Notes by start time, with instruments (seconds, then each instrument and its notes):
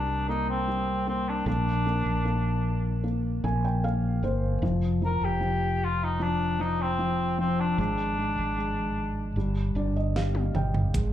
Already playing: fretless electric bass C2, felt piano C3 G3 A#3, cor anglais D4
0.28 felt piano A#3, cor anglais D#4
0.50 cor anglais C4
0.68 felt piano G3
1.07 felt piano A#3, cor anglais C4
1.29 cor anglais D4
1.46 fretless electric bass A#1, felt piano A#3, cor anglais D4
1.86 felt piano A#3
2.06 fretless electric bass A#1
2.25 felt piano A#3
3.04 felt piano A#3
3.44 fretless electric bass A#1, felt piano A#3 G#5
3.65 felt piano G5
3.84 felt piano A#3 F5
4.23 fretless electric bass G1, felt piano A#3 C5
4.62 fretless electric bass F1, felt piano F3
5.02 felt piano F3, cor anglais A#4
5.22 fretless electric bass F1, cor anglais G4
5.41 felt piano F3
5.85 cor anglais F4
6.04 cor anglais D#4
6.20 felt piano F3, cor anglais D4
6.59 felt piano F3, cor anglais D#4
6.81 cor anglais C4
6.99 felt piano F3
7.38 felt piano F3, cor anglais C4
7.60 cor anglais D4
7.78 fretless electric bass G#1, felt piano G#3, cor anglais D4
8.18 felt piano G#3
8.38 fretless electric bass G#1
8.58 felt piano G#3
9.36 fretless electric bass G1, felt piano G3
9.75 fretless electric bass G1, felt piano D4 D5
9.96 felt piano D#5
10.16 felt piano G4 F5, snare
10.35 high tom
10.54 fretless electric bass G1, felt piano G5, mid tom
10.74 floor tom
10.94 fretless electric bass G#1, felt piano G#3, kick, closed hi-hat